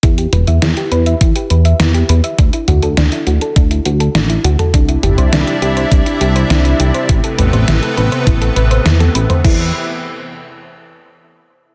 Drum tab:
CC |----------------|----------------|----------------|----------------|
HH |xxxxxxxxxxxxxxxx|xxxxxxxxxxxxxxxx|xxxxxxxxxxxxxxxx|xxxxxxxxxxxxxxxx|
SD |----o-------o---|----o-------o---|----o-------o---|----o-------oo--|
T2 |--o-------------|--o------------o|--o-------------|--o------------o|
BD |o-------o-------|o-------o-------|o-------o-------|o-------o-------|

CC |x---------------|
HH |----------------|
SD |----------------|
T2 |----------------|
BD |o---------------|